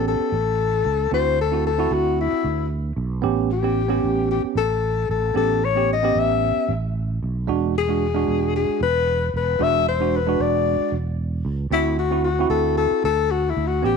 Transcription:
Already playing: A1 B3 C#4 G4
0.08 A4
0.20 muted fretless electric bass stroke
0.32 A1
0.85 C#2
1.11 D2 C4 E4 F#4 C5
1.41 A4
1.52 C4 E4 F#4
1.67 A4
1.78 C4 E4 F#4
1.91 D2 F#4
2.21 E4
2.44 D2
2.96 B1
3.22 A1 B3 C#4 G4
3.52 G4
3.63 B3 C#4 G4
3.88 B3 C#4 G4
4.03 A1
4.31 G4
4.44 muted fretless electric bass stroke
4.55 A1 A4
5.09 A1 A4
5.34 A1 B3 C#4 G4 A4
5.65 C#5
5.75 B3 C#4 G4
5.93 D#5
6.03 B3 C#4 G4
6.15 A1 E5
6.56 muted fretless electric bass stroke
6.68 A1
7.23 B1
7.47 E1 G#3 D4 F#4
7.78 G#4
7.88 G#3 D4 F#4
8.15 G#3 D4 F#4
8.28 E1
8.56 G#4
8.69 muted fretless electric bass stroke
8.81 E1 B4
9.34 E1 B4
9.59 E1 G#3 D4 F#4
9.63 E5
9.88 C5
10.00 G#3 D4 F#4
10.16 B4
10.26 G#3 D4 F#4
10.40 E1 D5
10.80 muted fretless electric bass stroke
10.92 E1
11.45 C#2
11.70 D2 C4 E4 F#4
11.99 F#4
12.11 C4 E4 F#4
12.24 F#4
12.39 C4 E4 F#4
12.49 D2 A4
12.77 A4
13.04 D2 A4
13.31 F#4
13.49 E4
13.56 D2
13.67 F#4
13.82 A1 B3 C#4 G4

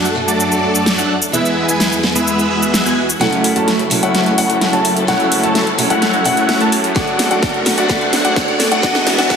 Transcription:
Already playing: F#2 F#3 A3 D4 F#4 A4
0.05 shaker
0.15 F#3 A3 D4 F#4
0.28 F#3 A3 D4 A4 D5, shaker
0.40 shaker
0.52 shaker
0.63 F#3 A3 D4 A4 D5
0.75 shaker
0.86 snare, shaker
0.98 F#3 A3 D4 A4 F#5, shaker
1.22 shaker
1.32 E2 E3 G#3 B3 E4 G#4 B4 E5, shaker
1.45 shaker
1.68 G#3 B3 E4 B4 G#5, shaker
1.80 snare, shaker
1.92 shaker
2.03 E3 G#3 B3 E4, snare
2.15 G#3 B3 E4 B4 E5, shaker
2.27 swell, shaker
2.39 shaker
2.50 G#3 B3 E4 B4 E5
2.63 shaker
2.74 snare, shaker
2.86 G#3 B3 E4 B4 G#5, shaker
3.10 shaker
3.20 F#1 F#3 A3 C#4 E4 F#4 A4 C#5 F#5, snare, closed hi-hat, riser
3.33 closed hi-hat
3.44 open hi-hat
3.56 F#1 A3 E4 F#4 C#5 A5, closed hi-hat
3.68 snare, closed hi-hat
3.79 closed hi-hat
3.90 F#3 A3 C#4 E4, open hi-hat
4.03 F#1 A3 E4 F#4 C#5 F#5, closed hi-hat
4.15 snare, closed hi-hat
4.26 closed hi-hat
4.38 F#1 A3 E4 F#4 C#5 F#5, open hi-hat
4.50 closed hi-hat
4.61 snare, closed hi-hat
4.73 F#1 A3 E4 F#4 C#5 A5, closed hi-hat
4.85 open hi-hat
4.97 closed hi-hat
5.07 F#1 F#3 A3 C#4 E4 F#4 C#5 F#5, snare, closed hi-hat
5.20 closed hi-hat
5.32 open hi-hat
5.43 F#1 A3 E4 F#4 C#5 A5, closed hi-hat
5.55 snare, closed hi-hat
5.67 closed hi-hat
5.78 F#3 A3 C#4 E4, open hi-hat
5.90 F#1 A3 E4 F#4 C#5 F#5, closed hi-hat
6.02 snare, closed hi-hat
6.14 closed hi-hat
6.24 F#1 F#3 A3 C#4 E4 F#4 C#5 F#5, open hi-hat
6.37 closed hi-hat
6.49 snare, closed hi-hat
6.61 F#2 A3 E4 F#4 C#5 A5, closed hi-hat
6.72 open hi-hat
6.84 closed hi-hat
6.95 F#1 F#3 A3 D4 F#4 D5 F#5, kick, snare, closed hi-hat
7.07 closed hi-hat
7.19 snare, open hi-hat
7.31 F#1 A3 D4 F#4 D5 F#5, closed hi-hat
7.43 kick, snare, closed hi-hat
7.54 closed hi-hat
7.65 F#3 A3 D4 F#4, snare, open hi-hat
7.78 F#1 A3 D4 F#4 D5 F#5, closed hi-hat
7.88 F#1 F#3 A3 D4 F#4 D5 F#5, kick, snare, closed hi-hat
8.01 closed hi-hat
8.13 snare, open hi-hat
8.25 F#1 A3 D4 F#4 D5 F#5, closed hi-hat
8.36 kick, snare, closed hi-hat
8.48 closed hi-hat
8.59 F#3 A3 D4 F#4, snare, open hi-hat
8.71 F#1 A3 D4 F#4 D5 F#5, closed hi-hat
8.82 E1 E3 F#3 G#3 D4 E4 F#4 G#4 B4 D5 F#5, kick, snare, closed hi-hat
8.95 snare, closed hi-hat
9.07 snare, open hi-hat
9.18 E1 G#3 D4 F#4 D5 F#5, snare, closed hi-hat
9.29 F#3 G#3 D4 F#4 D5 F#5, kick, snare, closed hi-hat

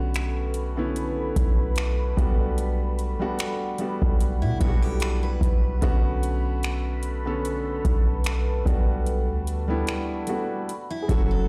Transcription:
Already playing: B1 D3 A3 B3 C#4 F#4 G4 A4 B4 B5
0.14 finger snap, closed hi-hat
0.54 closed hi-hat
0.76 D3 A3 B3 C#4 E4
0.96 closed hi-hat
1.36 B1, kick, closed hi-hat
1.76 finger snap, closed hi-hat
2.16 B1 G3 A3 B3 D4 F#4 F#5, kick, closed hi-hat
2.58 closed hi-hat
2.99 closed hi-hat
3.19 G3 A3 B3 D4 F#4
3.39 finger snap, closed hi-hat
3.78 G3 A3 B3 D4 F#4, closed hi-hat
4.02 B1, kick
4.20 closed hi-hat
4.42 B2 E4
4.59 B1 G3 A3 B3 D4 E4 F#4, kick, closed hi-hat
4.68 F#4
4.82 G4
5.00 A4, finger snap, closed hi-hat
5.23 B4
5.41 B1, kick, closed hi-hat
5.81 B1 D3 A3 B3 C#4 F#4 A4 B4, kick, closed hi-hat
6.23 closed hi-hat
6.63 finger snap, closed hi-hat
7.03 closed hi-hat
7.25 D3 A3 B3 C#4 A4
7.45 closed hi-hat
7.85 B1, kick, closed hi-hat
8.24 finger snap, closed hi-hat
8.65 B1 G3 A3 B3 D4 F#4 A4 F#5 B5, kick, closed hi-hat
9.06 closed hi-hat
9.28 D2
9.47 closed hi-hat
9.68 G3 A3 B3 D4 E4
9.87 finger snap, closed hi-hat
10.27 G3 A3 B3 D4 F#4, closed hi-hat
10.69 F#4 E5 A5, closed hi-hat
10.90 E4
11.02 G#4
11.08 F#1 F#3 A3 C#4 E4 F#4 A4, kick, closed hi-hat
11.31 A4

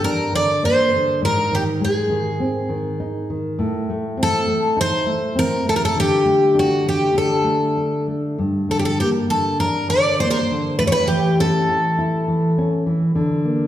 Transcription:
Already playing: G2
0.04 D4 A#4
0.33 D3 D5
0.63 A#3 C5
0.93 D3
1.22 G#2 A#4
1.51 D#3 G4
1.81 G#3 G#4
2.10 D#3
2.40 C4
2.69 D#3
3.00 D#4
3.30 D#3
3.59 A2
3.90 A3
4.17 C4
4.23 A4
4.47 A3
4.77 D#4
4.81 C5
5.06 A3
5.35 C4 A#4
5.65 A3
5.69 A4
5.76 A#4
5.85 A4
5.96 D3 G4
6.25 A3
6.55 D4
6.59 F#4
6.85 A3 G4
7.14 D3 A4
7.44 A3
7.77 D4
8.08 A3
8.38 G2
8.69 D3 A4
8.79 G4
8.85 A4
9.00 A#3 G4
9.30 D3 A4
9.60 D4 A#4
9.90 D3 D5
10.20 A#3 C5
10.30 A#4 C5
10.51 D3
10.79 A2 B4
10.87 C#5
10.92 B4
11.08 E3 G4
11.40 C#4 A4
11.69 E3
11.98 E4
12.28 E3
12.58 C#4
12.86 E3
13.15 D3
13.45 A#3

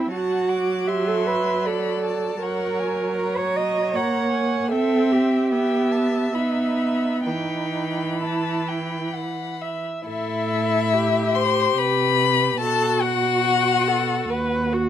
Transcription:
Already playing: E4 E5 G5
0.12 F#3 F#4 F#5 A5
0.49 D6
0.88 G4 E5 C6
1.08 A4
1.27 B4
1.65 A4 D5 B5
2.04 A5
2.41 F#3 A#4 C#5 F#5
2.79 G#5
3.17 C#5 A#5
3.38 C#5
3.56 D#5
3.93 A#3 C#5 F#5 A#5
4.32 G#5
4.71 C4 A4 E5 G5
5.12 G4
5.51 B3 E5 G5
5.92 A5
6.34 B3 D#4 B5
7.25 E3 D#4 G5 B5
8.21 E4 A5
8.68 G5
9.14 F#5
9.61 E5
10.05 A2 E4 A4 E5
10.93 G4
11.35 C5 C6
11.78 C3 B4 B5
12.60 B2 F#4 A4 A5
13.02 F#4 F#5
13.46 F#4
13.88 A4
14.30 D#2 B4
14.74 F#4

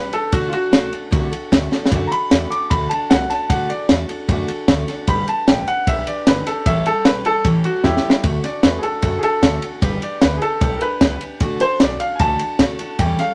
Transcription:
Already playing: C2 G3 D4 G4 B4
0.13 D4 G4 A4 B4, muted upright bass stroke, ride
0.32 D2 D3 A3 D4 F#4 A4, kick, ride
0.49 F4, ride
0.53 D4 F#4 A4, muted upright bass stroke
0.71 B1 A3 D4 F#4 A4, snare, ride
0.92 D4 F#4 A4, ride
1.11 C2 D3 A3 D4 F#4 A4, kick, ride
1.32 D4 F#4 A4, muted upright bass stroke, ride
1.52 D2 A3 D4 F#4 A4, kick, snare, ride
1.71 D4 F#4 A4, snare
1.86 snare
1.91 F#2 D3 A3 D4 F#4 A4, kick, ride
2.07 A4 A#5
2.12 D4 F#4 B5, muted upright bass stroke, ride
2.30 E2 A3 D4 F#4 A4, snare, ride
2.50 D4 F#4 A4 D6, muted upright bass stroke, ride
2.70 D2 D3 A3 D4 F#4 A4 B5, kick, ride
2.89 D4 F#4 A4 A5, ride
3.10 C2 A3 D4 F#4 A4 F#5, snare, ride
3.30 D4 F#4 A4 A5, muted upright bass stroke, snare, ride
3.49 D2 D3 A3 D4 F#4 A4 F#5, kick, ride
3.69 D4 F#4 A4 D5, ride
3.89 E2 A3 D4 F#4 A4, snare, ride
4.09 D4 F#4 A4, muted upright bass stroke, ride
4.28 F#2 D3 A3 D4 F#4 A4, kick, ride
4.48 D4 F#4 A4, ride
4.68 D2 A3 D4 F#4 A4, kick, snare, ride
4.88 D4 F#4 A4, snare, ride
5.07 G1 G3 D4 G4 B4 B5, kick, ride
5.28 D4 G4 B4 A5, muted upright bass stroke, ride
5.47 A1 G3 D4 G4 B4 G5, snare, ride
5.67 D4 G4 B4 F#5, ride
5.87 B1 G3 D4 G4 B4 E5, kick, ride
6.07 D4 G4 B4 D5, muted upright bass stroke, ride
6.26 G1 G3 D4 G4 B4, snare, ride
6.46 D4 G4 A4 B4, snare, ride
6.66 A1 A2 E3 G3 C#4 G4 A4 E5, kick, ride
6.86 G3 C#4 G4 A4, ride
7.05 B1 G3 C#4 G4 A4 B4, snare, ride
7.25 G3 C#4 G4 A4, muted upright bass stroke, ride
7.45 A2 E3 G3 C#4 G4 A4, kick, ride
7.64 C#4 F#4 G4 A4, ride
7.84 E2 G3 C#4 E4 G4 A4, kick, snare
7.97 snare
8.04 G3 C#4 G4 A4, muted upright bass stroke
8.10 snare
8.23 D2 D3 A3 D4 F#4 A4, kick, ride
8.44 D4 F#4 A4 D5, snare, ride
8.63 E2 A3 D4 F#4 A4 B4, snare, ride
8.78 G#4
8.83 D4 F#4 A4, ride
9.02 F#2 D3 A3 D4 F#4 A4, kick, ride
9.19 G#4 A4, ride
9.23 D4 F#4 A4, muted upright bass stroke
9.42 D2 A3 D4 F#4 A4, kick, snare, ride
9.62 D4 F#4 A4, ride
9.81 G1 G3 D4 G4 B4, kick, ride
10.01 D4 G4 B4 D5, ride
10.21 D2 G3 D4 G4 B4, snare, ride
10.37 G#4 B4
10.42 D4 G4 A4, ride
10.60 B1 G3 D4 G4 B4, kick, ride
10.77 A#4 B4, ride
10.82 D4 G4 B4
11.01 C#2 G3 D4 G4 B4, kick, snare, ride
11.21 D4 G4 B4, muted upright bass stroke, ride
11.40 D2 D3 A3 D4 F#4 A4, kick, ride
11.60 D4 F#4 A4 C5, muted upright bass stroke, snare, ride
11.80 B1 A3 D4 F#4 A4 D5, snare, ride
12.00 D4 F#4 A4 F5, muted upright bass stroke, ride
12.16 G#5, ride
12.20 C#2 D3 A3 D4 F#4 A4 A5, kick
12.39 D4 F#4 A4, ride
12.59 D2 A3 D4 F#4 A4, kick, snare, ride
12.79 D4 F#4 A4, muted upright bass stroke, ride
12.99 E2 A2 E3 G3 C#4 G4 A4 G5, kick, ride
13.19 G3 C#4 G4 A4 F5, muted upright bass stroke, snare, ride

